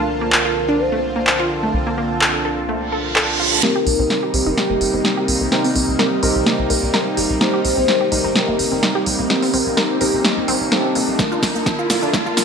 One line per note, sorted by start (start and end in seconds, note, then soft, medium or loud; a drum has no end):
0.00 1.72 C2 medium
0.00 3.59 D3 medium
0.00 3.60 A#3 medium
0.00 3.59 C4 medium
0.00 3.60 D4 medium
0.00 3.59 F4 medium
0.00 3.60 F4 medium
0.00 0.81 A#4 loud
0.00 3.59 A5 medium
0.00 3.60 A5 medium
0.21 0.27 A#3 medium
0.32 clap loud
0.45 0.54 F4 medium
0.69 0.74 D4 loud
0.80 1.42 C5 loud
0.92 0.98 A3 medium
1.16 1.22 A#3 medium
1.27 clap loud
1.39 1.48 F4 loud
1.63 1.67 A3 medium
1.74 3.61 C2 medium
1.87 1.90 A#3 medium
1.98 2.04 A#3 medium
2.21 2.25 A4 loud
2.21 clap loud
2.45 2.55 A4 medium
2.69 2.78 A3 medium
2.69 reverse cymbal medium
2.92 2.99 A4 medium
3.16 3.20 A4 loud
3.16 clap loud
3.40 3.46 F4 medium
3.63 11.15 C3 medium
3.63 11.15 G3 medium
3.63 12.45 A#3 medium
3.63 3.73 A#3 loud
3.63 4.31 C4 medium
3.63 11.15 D#4 medium
3.63 4.31 D#4 medium
3.63 4.31 G4 medium
3.63 4.49 A#4 loud
3.63 4.31 A#4 medium
3.63 snare soft
3.63 riser medium
3.76 3.79 G4 loud
3.87 3.96 C2 medium
3.87 open hi-hat loud
3.99 4.07 C2 medium
3.99 4.05 C4 medium
4.10 snare soft
4.23 4.31 G4 medium
4.34 4.43 C2 medium
4.34 5.49 C4 medium
4.34 5.49 D#4 medium
4.34 5.49 G4 medium
4.34 5.49 A#4 medium
4.34 open hi-hat loud
4.46 4.54 G1 medium
4.46 4.52 D#4 loud
4.58 5.20 G4 loud
4.58 snare soft
4.70 4.78 G1 medium
4.70 4.76 A#3 medium
4.81 4.90 G1 medium
4.81 open hi-hat loud
4.94 5.01 G1 medium
4.94 4.99 C4 medium
5.05 snare soft
5.17 5.26 G4 loud
5.28 5.37 C2 medium
5.28 open hi-hat loud
5.41 5.49 C2 medium
5.41 5.44 A#3 medium
5.52 6.20 C4 medium
5.52 6.20 D#4 medium
5.52 6.20 G4 medium
5.52 6.20 A#4 loud
5.52 snare medium
5.64 5.68 C4 medium
5.64 open hi-hat medium
5.76 5.84 C2 medium
5.76 5.82 C4 medium
5.76 open hi-hat loud
5.88 5.96 C2 medium
5.99 6.03 A#4 loud
5.99 snare medium
6.23 6.32 C2 medium
6.23 7.38 C4 loud
6.23 7.38 D#4 medium
6.23 7.38 G4 medium
6.23 6.33 A#4 medium
6.23 7.38 A#4 loud
6.23 open hi-hat loud
6.35 6.43 C2 medium
6.46 6.56 A#3 medium
6.46 snare medium
6.59 6.67 C2 medium
6.70 6.79 C2 medium
6.70 6.77 A#4 medium
6.70 open hi-hat loud
6.83 6.90 C2 medium
6.94 6.98 A#4 loud
6.94 snare medium
7.17 7.26 G1 medium
7.17 7.24 G4 medium
7.17 open hi-hat loud
7.30 7.38 C2 medium
7.41 7.51 A#3 loud
7.41 8.09 C4 medium
7.41 8.09 D#4 medium
7.41 8.09 G4 medium
7.41 8.09 A#4 medium
7.41 8.37 C5 loud
7.41 snare medium
7.53 7.57 G4 loud
7.64 7.73 C2 medium
7.64 open hi-hat loud
7.77 7.85 C2 medium
7.77 7.83 C4 medium
7.88 snare medium
8.01 8.09 G4 loud
8.12 8.21 C2 loud
8.12 9.27 C4 medium
8.12 9.27 D#4 medium
8.12 9.27 G4 medium
8.12 9.27 A#4 loud
8.12 open hi-hat loud
8.24 8.32 G1 medium
8.24 8.30 D#4 loud
8.35 8.98 A#4 loud
8.35 snare medium
8.48 8.56 G1 medium
8.48 8.54 A#3 medium
8.59 8.68 G1 medium
8.59 open hi-hat loud
8.72 8.79 G1 medium
8.72 8.77 C4 medium
8.83 snare medium
8.95 9.04 G4 loud
9.06 9.15 C2 medium
9.06 open hi-hat loud
9.19 9.27 C2 medium
9.19 9.22 A#3 medium
9.30 9.98 C4 medium
9.30 9.98 D#4 medium
9.30 9.98 G4 medium
9.30 9.98 A#4 loud
9.30 snare medium
9.42 9.46 C4 medium
9.42 open hi-hat medium
9.54 9.62 C2 loud
9.54 9.60 C4 medium
9.54 open hi-hat loud
9.66 9.74 C2 medium
9.77 9.81 A#4 loud
9.77 snare medium
10.01 10.10 C2 loud
10.01 10.70 C4 loud
10.01 10.70 D#4 medium
10.01 10.70 G4 medium
10.01 10.70 A#4 loud
10.01 10.11 A#4 medium
10.01 open hi-hat loud
10.13 10.21 C2 medium
10.24 10.34 A#3 medium
10.24 snare medium
10.37 10.45 A#1 medium
10.48 10.57 C2 medium
10.48 10.58 C4 loud
10.48 open hi-hat loud
10.61 10.68 C2 medium
10.72 10.76 A#3 medium
10.72 11.16 C4 medium
10.72 11.16 D#4 medium
10.72 11.16 G4 medium
10.72 11.16 A4 loud
10.72 snare medium
10.95 11.04 G1 medium
10.95 11.02 A#3 medium
10.95 open hi-hat loud
11.08 11.16 C2 medium
11.19 12.45 D3 medium
11.19 11.29 A3 medium
11.19 11.87 A#3 medium
11.19 11.87 D4 medium
11.19 12.45 F4 medium
11.19 11.87 F4 medium
11.19 12.05 A#4 loud
11.19 12.45 A5 medium
11.19 11.87 A5 medium
11.19 kick loud
11.19 snare medium
11.19 shaker soft
11.32 11.35 F4 medium
11.32 shaker soft
11.43 11.51 C2 loud
11.43 kick medium
11.43 snare medium
11.43 open hi-hat loud
11.43 shaker medium
11.55 11.63 C2 medium
11.55 11.61 A#3 medium
11.55 shaker soft
11.66 kick loud
11.66 snare medium
11.66 shaker soft
11.79 11.87 F4 medium
11.79 shaker soft
11.90 11.99 C2 medium
11.90 12.12 A#3 medium
11.90 12.12 D4 medium
11.90 12.12 F4 medium
11.90 12.12 A4 medium
11.90 snare medium
11.90 open hi-hat loud
11.90 shaker medium
12.02 12.10 G1 medium
12.02 12.08 D4 medium
12.02 shaker soft
12.13 12.23 A3 medium
12.13 12.45 A#3 medium
12.13 12.45 F4 medium
12.13 12.45 A#4 loud
12.13 12.45 A5 medium
12.13 kick loud
12.13 snare medium
12.13 shaker soft
12.26 12.34 G1 medium
12.26 12.29 F4 medium
12.26 shaker soft
12.37 12.45 G1 medium
12.37 snare medium
12.37 open hi-hat loud
12.37 shaker medium